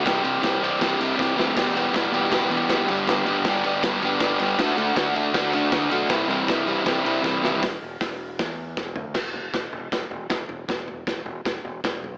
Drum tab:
CC |--------|x-------|--------|--------|
RD |xxxxxx--|-xxxxxxx|xxxxxxxx|xxxxxxxx|
HH |--------|--------|--------|--------|
SD |o-o-o-oo|o-o-o-o-|o-o-o-o-|o-o-o-o-|
FT |--------|--------|--------|--------|
BD |o-o-o-o-|o-o-o-o-|o-o-o-o-|o-o-o-o-|

CC |--------|--------|x-------|--------|
RD |xxxxxx--|--------|--------|--------|
HH |--------|o-o-o---|--------|--------|
SD |o-o-o-oo|o-o-o-o-|o-o-o-o-|o-o-o-o-|
FT |--------|-------o|oooooooo|oooooooo|
BD |o-o-o-o-|o-o-o-o-|o-o-o-o-|o-o-o-o-|